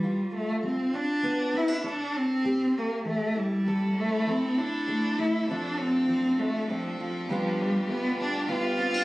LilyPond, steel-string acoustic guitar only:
\new Staff \with { instrumentName = "Steel-string acoustic guitar" } { \time 3/4 \key g \dorian \tempo 4 = 99 << { f'4. d'8 b8 c'16 d'16 | a'4 g'4. e'8 | a'4. e'8 a8 a8 | <f c' d' f'>4. d'8 c'8 f'8 |
<g b d' f'>4. d'8 b8 c'16 d'16 | } \\ { d4 g4 d4 | c4 c4 e4 | f,4 f4 c4 | d4 f4 a,4 |
d4 g4 d4 | } >> }